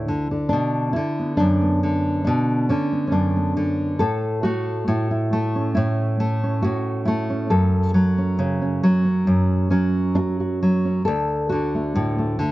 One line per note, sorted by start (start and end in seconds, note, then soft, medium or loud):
0.00 0.51 D2 medium
0.00 0.48 D4 medium
0.00 0.50 E4 medium
0.08 0.30 D3 soft
0.31 0.95 D3 soft
0.49 0.96 B2 medium
0.49 0.93 D4 medium
0.93 1.82 D3 soft
0.93 1.37 E4 medium
1.19 1.60 B3 soft
1.37 2.28 F#2 medium
1.37 2.23 D4 medium
1.61 2.91 B3 soft
1.83 2.69 D3 soft
2.24 2.71 B2 medium
2.24 3.11 D4 medium
2.69 3.55 D3 soft
2.69 3.06 C#4 medium
2.92 3.35 B3 soft
3.07 4.01 C#4 soft
3.12 3.95 F#2 soft
3.12 3.99 D4 medium
3.36 3.96 B3 soft
3.57 4.01 D3 soft
3.99 4.86 A2 medium
3.99 4.43 A4 medium
4.43 5.32 A3 soft
4.43 6.61 F#4 medium
4.88 5.75 A2 medium
4.88 5.10 E4 soft
5.11 5.74 E4 soft
5.33 6.20 A3 medium
5.56 6.42 C#4 soft
5.75 6.63 A2 medium
5.75 7.04 E4 medium
6.20 7.07 A3 soft
6.43 7.29 C#4 soft
6.62 7.51 A2 soft
6.62 7.50 F#4 medium
7.05 7.94 A3 soft
7.05 7.50 E4 medium
7.30 7.46 C#4 soft
7.50 9.26 F#2 medium
7.50 10.15 A4 medium
7.94 8.82 F#3 soft
8.18 8.39 C#4 soft
8.39 8.83 C#3 medium
8.39 8.61 C#4 soft
8.62 9.04 C#4 soft
8.83 9.70 F#3 medium
9.05 9.69 C#4 soft
9.27 11.01 F#2 medium
9.70 10.61 F#3 soft
9.70 10.84 C#4 medium
10.15 10.18 D4 medium
10.15 10.39 F#4 soft
10.40 11.02 F#4 soft
10.63 11.02 F#3 soft
10.85 11.02 C#4 soft
11.05 12.52 D2 medium
11.05 11.49 A4 medium
11.49 12.38 D3 soft
11.49 12.52 F#4 medium
11.75 11.95 A3 soft
11.96 12.40 A2 medium
11.96 12.17 A3 soft
12.19 12.52 A3 soft
12.39 12.52 D3 medium